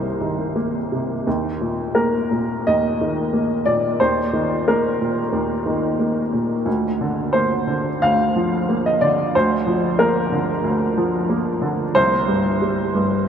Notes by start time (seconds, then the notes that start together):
Already playing: C2 C3 D#3 A#3 A#4 C5
0.21 D#3
0.56 A#3
0.92 C3
1.27 D#2
1.61 A#2
1.95 A#3 A#4
2.31 A#2
2.67 D#2 D#5
3.01 D#3
3.33 A#3
3.66 A#2 D5
4.00 D#2 C5
4.33 D#3
4.68 A#3 A#4
5.01 A#2
5.32 D#2
5.66 D#3
5.99 A#3
6.33 A#2
6.65 D2
7.01 D3
7.33 A#3 C5
7.67 D3
8.02 D2 F5
8.36 F3
8.69 A#3
8.86 D#5
9.01 D3 D5
9.35 D2 C5
9.66 F3
9.99 A#3 A#4
10.32 D3
10.63 D2
10.97 F3
11.29 A#3
11.62 D3
11.95 C2 C5
12.28 G2
12.62 G3
12.95 G2